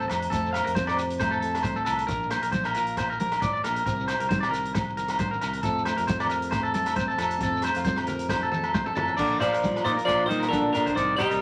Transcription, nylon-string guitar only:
0.00 0.29 C3 medium
0.00 0.76 F3 medium
0.00 0.29 A3 medium
0.00 0.32 C4 medium
0.00 0.29 A4 medium
0.32 1.64 F2 medium
0.32 0.53 A3 medium
0.32 0.76 C4 medium
0.32 0.98 A4 medium
0.54 1.19 A3 medium
0.76 2.07 F3 medium
0.76 2.08 C4 medium
0.98 1.43 G4 medium
1.20 2.06 A3 medium
1.43 2.07 C3 medium
1.43 2.07 A4 medium
1.64 1.86 G2 medium
1.86 2.09 A2 medium
2.07 3.62 A#2 medium
2.07 2.29 A#3 medium
2.07 2.52 D4 medium
2.07 muted nylon-string guitar stroke medium
2.31 2.97 A#3 medium
2.52 3.83 F3 medium
2.52 3.83 D4 medium
2.76 3.20 F4 medium
2.99 3.84 A#3 medium
3.20 3.42 F2 medium
3.20 3.84 G4 medium
3.42 3.64 A2 medium
3.63 3.85 A#2 medium
3.86 4.30 C3 medium
3.86 4.08 C4 medium
3.86 4.52 G4 medium
3.86 muted nylon-string guitar stroke medium
4.09 4.74 C4 medium
4.30 5.41 D#3 medium
4.30 5.61 D#4 medium
4.52 4.97 A#4 medium
4.74 5.63 C4 medium
4.98 muted nylon-string guitar stroke medium
5.20 5.42 D3 medium
5.42 5.64 D#3 medium
5.62 7.40 F2 medium
5.62 5.86 A3 medium
5.62 6.08 C4 medium
5.62 6.29 A4 medium
5.86 6.49 A3 medium
6.09 6.95 C4 medium
6.29 6.73 G4 medium
6.50 7.37 A3 medium
6.73 7.38 C3 medium
6.73 7.38 A4 medium
6.96 7.41 C4 medium
7.41 8.72 F2 medium
7.41 7.62 A3 medium
7.41 7.84 C4 medium
7.41 8.08 A4 medium
7.63 8.29 A3 medium
7.85 9.16 F3 medium
7.85 9.19 C4 medium
8.08 8.52 G4 medium
8.31 9.17 A3 medium
8.51 9.16 C3 medium
8.51 9.16 A4 medium
8.73 8.95 G2 medium
8.95 9.18 A2 medium
9.17 10.73 A#2 medium
9.17 10.94 A#3 medium
9.63 10.05 D4 medium
9.84 10.93 F3 medium
9.84 10.28 F4 medium
10.06 10.93 D4 soft
10.29 10.96 F4 medium
10.50 10.73 A2 medium
10.74 10.95 A#2 medium
10.96 11.41 C4 medium
10.96 muted nylon-string guitar stroke medium

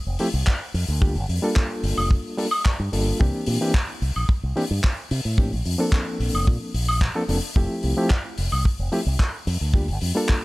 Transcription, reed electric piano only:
0.19 0.27 F3 medium
0.19 0.28 A3 medium
0.19 0.28 C4 medium
0.19 0.28 E4 medium
0.19 0.28 G4 loud
1.01 1.14 G3 medium
1.01 1.14 A#3 medium
1.01 1.14 D4 medium
1.01 1.14 F4 medium
1.01 1.14 G4 medium
1.42 2.34 G3 medium
1.42 2.35 A#3 medium
1.42 2.35 D4 medium
1.42 2.35 F4 medium
1.42 2.35 A4 loud
2.38 2.46 G3 medium
2.38 2.46 A#3 medium
2.38 2.46 D4 medium
2.38 2.46 F4 medium
2.38 2.46 A4 loud
2.92 3.17 G3 medium
2.92 3.17 A#3 medium
2.92 3.17 D4 medium
2.92 3.17 F4 medium
2.92 3.17 A4 medium
3.19 3.58 E3 medium
3.19 3.58 A#3 medium
3.19 3.58 C4 medium
3.19 3.58 D4 medium
3.19 3.58 G4 loud
3.61 3.73 E3 medium
3.61 3.73 A#3 medium
3.61 3.73 C4 medium
3.61 3.73 D4 medium
3.61 3.73 G4 medium
4.56 4.64 E3 medium
4.56 4.64 A#3 medium
4.56 4.64 C4 medium
4.56 4.64 D4 medium
4.56 4.64 G4 loud
5.38 5.50 F3 medium
5.38 5.51 A#3 medium
5.38 5.51 C4 medium
5.38 5.51 D4 medium
5.38 5.51 G4 medium
5.78 6.71 F3 medium
5.78 6.71 A#3 medium
5.78 6.71 C4 medium
5.78 6.71 D4 medium
5.78 6.72 A4 loud
7.15 7.23 F3 loud
7.15 7.23 A#3 medium
7.15 7.23 C4 medium
7.15 7.23 D4 medium
7.15 7.23 A4 loud
7.28 7.37 F3 medium
7.28 7.37 A#3 medium
7.28 7.37 C4 medium
7.28 7.37 D4 medium
7.28 7.37 A4 medium
7.56 7.94 F3 medium
7.56 7.94 A3 medium
7.56 7.94 C4 medium
7.56 7.94 E4 medium
7.56 7.95 G4 loud
7.97 8.09 F3 medium
7.97 8.09 A3 medium
7.97 8.09 C4 medium
7.97 8.09 E4 medium
7.97 8.09 G4 medium
8.92 9.00 F3 medium
8.92 9.00 A3 medium
8.92 9.00 C4 medium
8.92 9.00 E4 medium
8.92 9.01 G4 loud
9.74 9.87 G3 medium
9.74 9.87 A#3 medium
9.74 9.87 D4 medium
9.74 9.87 F4 medium
9.74 9.87 G4 medium
10.15 10.45 G3 medium
10.15 10.45 A#3 medium
10.15 10.45 D4 medium
10.15 10.45 F4 medium
10.15 10.45 A4 loud

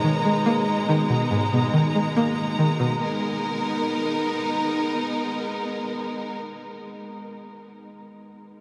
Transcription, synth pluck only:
0.00 0.68 G#2 loud
0.00 0.88 B2 medium
0.00 0.87 D#3 medium
0.25 1.31 G#3 medium
0.46 1.52 A#3 loud
0.89 1.72 D#3 medium
1.10 1.52 B2 medium
1.31 2.38 G#2 medium
1.53 2.59 B2 medium
1.74 2.58 D#3 medium
1.95 3.01 G#3 medium
2.17 3.02 A#3 loud
2.59 3.01 D#3 medium
2.80 3.01 B2 medium

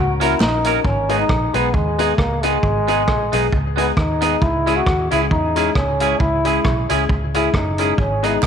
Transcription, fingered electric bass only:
0.00 0.34 C#2 loud
0.40 0.78 A#1 medium
0.85 1.23 G#1 medium
1.29 1.51 A#1 medium
1.54 1.71 B1 medium
1.74 2.12 D#2 medium
2.18 2.56 C#2 medium
2.63 3.08 G#1 loud
3.08 3.29 A#1 medium
3.33 3.49 B1 medium
3.53 3.90 C#2 loud
3.97 4.35 D#2 loud
4.42 4.79 C#2 loud
4.87 5.08 D#2 medium
5.12 5.28 C#2 medium
5.31 5.69 E2 medium
5.75 6.13 C#2 medium
6.20 6.58 C#2 loud
6.65 6.86 B1 medium
6.90 7.07 C#2 medium
7.09 7.47 C#2 medium
7.54 7.92 F#1 medium
7.98 8.36 G#1 loud
8.43 8.47 B1 medium

